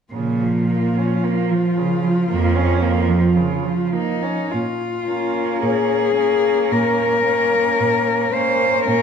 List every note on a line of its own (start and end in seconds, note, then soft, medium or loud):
0.13 1.07 A#2 soft
0.13 0.43 C#3 soft
0.13 4.30 F3 soft
0.13 3.93 F4 soft
0.42 0.72 F3 soft
0.70 0.99 A#3 soft
0.98 1.26 C#4 soft
1.24 1.52 A#3 soft
1.51 1.79 F3 soft
1.78 2.05 C#3 soft
2.03 2.29 F3 soft
2.29 3.21 F2 soft
2.29 2.57 A#3 soft
2.55 2.84 C#4 soft
2.82 3.10 A#3 soft
3.08 3.38 F3 soft
3.36 3.66 C#3 soft
3.65 3.94 F3 soft
3.92 4.24 A#3 soft
3.92 4.54 D#4 soft
4.23 4.52 C#4 soft
4.52 5.49 A#2 soft
4.52 5.63 F4 soft
5.07 6.15 A#3 soft
5.07 6.15 C#4 soft
5.63 6.57 A#2 soft
5.63 6.73 G#4 medium
6.17 7.24 A#3 soft
6.17 7.24 C#4 soft
6.72 7.66 A#2 soft
6.72 8.35 A#4 soft
7.25 8.32 A#3 soft
7.25 8.32 C#4 soft
7.80 8.73 A#2 soft
8.33 8.86 A#3 soft
8.33 8.87 C#4 soft
8.33 8.86 C5 soft
8.87 9.02 A#2 soft
8.87 9.02 A#3 soft
8.87 9.02 C#4 soft
8.87 9.02 A#4 medium